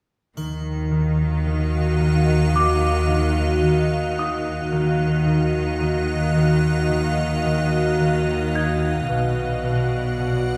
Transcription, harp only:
0.37 D#3
0.91 D#3
1.46 D#3
2.00 D#3
2.54 D#3
3.09 D#3
3.63 D#3
4.18 D#4
4.72 D#3
5.27 D#3
5.82 D#3
6.36 D#3
6.90 D#3
7.45 D#3
8.00 D#3
8.55 D#4
9.09 B2
9.64 B2
10.19 B2

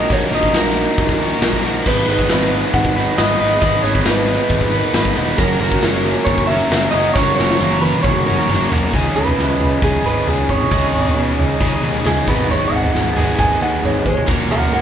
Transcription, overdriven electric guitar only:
Already playing: F#3 D#4 A#4
0.10 A#3 D#4 F#4 A#4
0.32 D#4 F#4 A#4
0.53 A#3 D#4 F#4 A#4
1.20 D#4 F#4 A#4
1.42 A#3 D#4 F#4 A#4
1.65 D#4 F#4 A#4
1.87 G#3 B3 D#4 B4
2.09 B3 D#4 B4
2.31 G#3 B3 D#4 B4
2.96 B3 D#4 B4
3.18 G#3 B3 D#4 B4
3.40 B3 D#4 B4
3.61 G#3 B3 D#4 B4
3.83 B3 D#4 B4
4.06 G#3 B3 D#4 B4
4.72 B3 D#4 B4
4.94 G#3 B3 D#4 B4
5.16 B3 D#4 B4
5.39 F#3 A#3 C#4 F#4 A#4
5.61 C#4 F#4 A#4
5.84 F#3 A#3 C#4 F#4 A#4
6.50 C#4 F#4 A#4
6.72 A#3 C#4 F#4 A#4
6.94 C#4 F#4 A#4
7.17 F#3 A#3 C#4 F#4 A#4
7.39 C#4 F#4 A#4
7.61 F#3 A#3 C#4 F#4 A#4
8.26 C#4 F#4 A#4
8.50 A#3 C#4 F#4 A#4
8.71 C#4 F#4 A#4
8.93 C#3 G#3 C#4 D#4 G#4
9.82 C#3 G#3 C#4 D#4 G#4
10.71 C#3 G#3 C#4 D#4 G#4
11.60 C#3 G#3 C#4 D#4 G#4
12.28 G#2 D#3 G#3 B3 D#4 G#4
13.17 G#2 D#3 G#3 B3 D#4 G#4
14.27 A#3 C#4 F#4 A#4

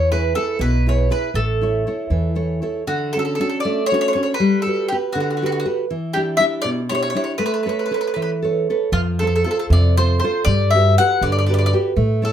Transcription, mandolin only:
0.12 B4
0.35 A4
0.61 B4
0.89 C#5
1.12 B4
1.35 A4
2.87 F#4
3.13 A4
3.19 A4
3.25 A4
3.35 A4
3.41 A4
3.49 A4
3.60 D5
3.86 C#5
3.94 C#5
4.01 C#5
4.08 C#5
4.13 C#5
4.23 C#5
4.34 B4
4.62 A4
4.88 G4
5.13 F#4
5.20 F#4
5.31 F#4
5.37 F#4
5.46 F#4
5.52 F#4
5.60 F#4
6.13 G4
6.37 E5
6.62 D5
6.89 C#5
6.95 C#5
7.03 C#5
7.10 C#5
7.17 C#5
7.24 C#5
7.38 B4
7.46 B4
7.54 B4
7.63 B4
7.69 B4
7.79 B4
7.86 B4
7.94 B4
8.01 B4
8.07 B4
8.14 B4
8.22 B4
8.93 F4
9.19 A4
9.27 A4
9.36 A4
9.44 A4
9.51 A4
9.59 A4
9.73 D5
9.97 C5
10.20 C5
10.45 D5
10.71 E5
10.98 F#5
11.23 D5
11.32 D5
11.39 D5
11.46 D5
11.54 D5
11.59 D5
11.66 D5
12.25 A4

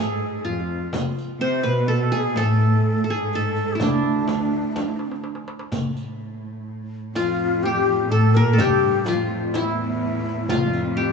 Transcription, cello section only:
Already playing: A2
0.09 G#2
0.44 F2
1.39 C3
1.64 B2
2.35 A2
3.07 G#2
3.79 D2
7.14 F2
8.09 A2
8.33 A#2
8.57 G2
9.06 F2
9.54 E2
10.50 F2

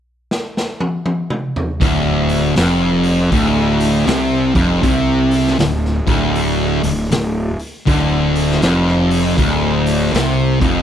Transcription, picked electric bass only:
1.81 D1
2.58 F1
3.32 D1
4.08 C2
4.56 F1
4.84 C2
5.60 D1
6.08 D1
6.84 D1
7.12 D1
7.87 D1
8.63 F1
9.38 D1
10.13 C2
10.62 F1

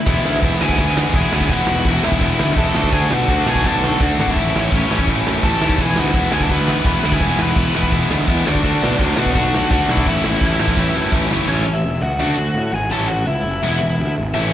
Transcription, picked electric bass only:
0.07 E1
0.25 D2
0.43 E1
0.61 D2
0.79 D2
1.14 E1
1.33 D2
1.49 E1
1.69 E1
1.85 E1
2.05 E1
2.21 E1
2.40 D2
2.57 E1
2.77 D2
2.93 D2
3.12 B2
3.29 D2
3.47 B2
3.65 B1
4.01 D2
4.19 G#1
4.37 A1
4.55 A1
4.72 A1
4.91 A1
5.07 A1
5.27 F#2
5.44 A1
5.63 D#2
5.79 E1
5.99 D2
6.14 E1
6.33 D2
6.50 D2
6.85 E1
7.05 D2
7.21 E1
7.40 E1
7.56 E1
7.76 E1
7.92 E1
8.10 D2
8.28 E2
8.47 D2
8.65 D2
8.83 B2
9.00 D2
9.18 B2
9.35 B1
9.71 D2
9.89 B1
10.06 A1
10.24 A1
10.42 A1
10.60 A1
10.77 A1
10.95 F#2
11.13 A1
11.31 F#1
11.49 A1
11.66 A1
11.84 E1
12.02 C#2
12.20 D2
12.38 D2
12.54 A2
12.73 G#1
12.90 A1
13.27 C#2
13.44 F#1
13.62 E1
13.81 E1
13.99 D2
14.18 G#1
14.36 A1

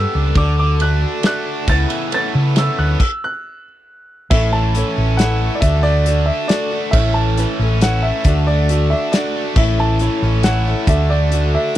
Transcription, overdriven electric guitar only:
Already playing: G3 B3 D4
0.15 D4
0.36 D3
0.57 D3
0.80 A3
1.02 D4
1.24 A3
1.46 D4
1.67 C#3
1.88 E3
2.11 A3
2.33 B3
2.56 A3
2.78 B3
4.31 A2
4.53 E3
4.75 E3
4.97 C#4
5.19 E4
5.41 A3
5.63 D3
5.84 A3
6.05 D3
6.28 D4
6.50 F#4
6.72 A3
6.95 A2
7.16 E3
7.39 E3
7.60 C#4
7.82 E4
8.05 A3
8.27 D3
8.50 A3
8.71 D3
8.93 D4
9.15 F#4
9.36 A3
9.58 A2
9.79 E3
10.00 E3
10.23 C#4
10.45 E4
10.66 A3
10.88 D3
11.11 A3
11.33 D3
11.54 D4

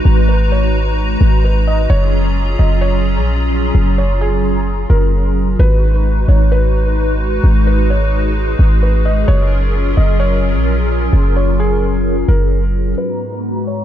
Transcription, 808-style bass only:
0.05 G#1
1.21 G#1
1.90 F#1
2.59 F#1
3.17 A#1
3.75 F#1
4.90 F#1
5.59 G#1
6.28 G#1
7.44 G#1
8.59 G#1
9.28 F#1
9.97 F#1
10.55 A#1
11.13 F#1
12.28 F#1

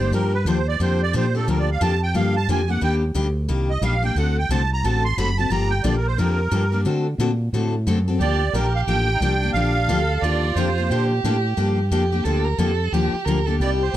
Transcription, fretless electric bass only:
Already playing: G1
0.11 G2
0.45 D#2
0.80 F2
1.14 A#2
1.48 D2
1.81 F2
2.15 G2
2.48 F2
2.82 D#2
3.15 D2
3.49 C2
3.81 A#1
4.15 D2
4.49 C2
4.84 A1
5.17 F#1
5.50 G1
5.84 A#1
6.18 F2
6.51 G2
6.85 D3
7.18 A#2
7.53 A2
7.87 F#2
8.20 D2
8.53 A#1
8.87 A1
9.21 C2
9.54 A#1
9.88 D2
10.22 D#2
10.55 F2
10.90 A#2
11.24 A2
11.57 G2
11.91 F2
12.25 D2
12.58 F2
12.92 D#2
13.13 muted fretless electric bass stroke
13.26 D2
13.60 C2
13.93 A#1

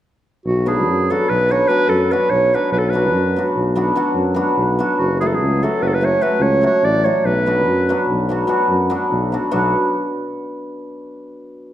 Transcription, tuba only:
0.45 B1
0.88 F#2
1.30 B1
1.88 F#2
2.30 B1
2.71 B1
3.12 F#2
3.56 B1
4.14 F#2
4.57 B1
4.99 F#1
5.40 C#2
5.82 F#1
6.39 C#2
6.83 A1
7.24 B1
7.66 F#2
8.09 B1
8.69 F#2
9.11 B1
9.53 B1

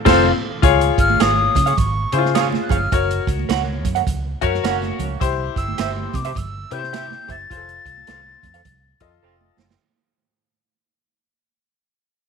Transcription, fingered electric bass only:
0.06 F1
0.63 C#2
0.98 G#1
1.21 G#1
1.56 C#3
1.78 G#1
2.13 C#3
2.71 G1
2.92 F#1
3.27 C#2
3.49 C#2
3.85 F#2
4.07 C#2
4.42 F#2
4.64 F#1
4.99 C#2
5.21 C2
5.57 G1
5.79 G1
6.14 C3
6.36 G1
6.72 C3
7.29 F#1
7.51 F1
7.85 C2
8.08 C2
8.43 F2
8.65 C2
9.01 F2
9.22 F1
9.58 F#1

